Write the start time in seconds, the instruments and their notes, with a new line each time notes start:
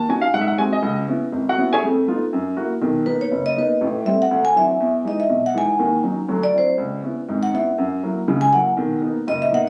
0.09 grand piano C#4 D#4 F#4 G#5
0.21 grand piano F5
0.34 grand piano G#2 F#5
0.41 grand piano E5
0.48 grand piano F#5
0.58 grand piano G#3 C4 F#4 G#5
0.73 grand piano D#5
0.82 grand piano C#2
1.08 grand piano B3 C#4 E4
1.33 grand piano G#1
1.49 grand piano F#4 F#5
1.58 grand piano B3 C#4 E4
1.73 grand piano G#4 C#5 E5 G#5
1.83 grand piano F2 A3
2.07 grand piano A3 B3 D#4 F4
2.33 grand piano F#2
2.57 grand piano A#3 E4 F#4
2.81 grand piano B1 D#3
3.06 grand piano A#3 B3 D#4, vibraphone B4
3.21 vibraphone C#5
3.31 grand piano F#1
3.46 vibraphone D#5
3.56 grand piano A#3 B3 D#4, vibraphone B4
3.81 grand piano A1 A2
4.05 grand piano G3 A3 C4, vibraphone E5
4.22 vibraphone F#5
4.31 grand piano D2
4.45 vibraphone G#5
4.55 grand piano E3 F#3 C4 D4, vibraphone E5
4.80 grand piano E2
5.05 grand piano E3 G#3 D#4, vibraphone D#5
5.20 vibraphone E5
5.29 grand piano B1
5.46 vibraphone F#5
5.54 grand piano E3 G#3 D#4, vibraphone G#5
5.79 grand piano D#2 D#3
6.03 grand piano F#3 C#4 D#4
6.28 grand piano D2 F#3
6.43 vibraphone D5
6.53 grand piano F#3 C4 D4 E4
6.58 vibraphone C5
6.78 grand piano C#2
7.03 grand piano B3 C#4 E4
7.29 grand piano G#1 G#2
7.43 vibraphone F#5
7.53 grand piano B3 C#4 E4, vibraphone E5
7.78 grand piano F#2
8.03 grand piano F#3 A#3 E4
8.28 grand piano C#2 C#3
8.41 vibraphone G#5
8.52 grand piano F#3 A#3 E4, vibraphone F#5
8.77 grand piano B1 D#3
9.01 grand piano A#3 B3 D#4
9.27 grand piano F#1 A#2, vibraphone D#5
9.42 vibraphone E5
9.51 grand piano A#3 B3 D#4, vibraphone F#5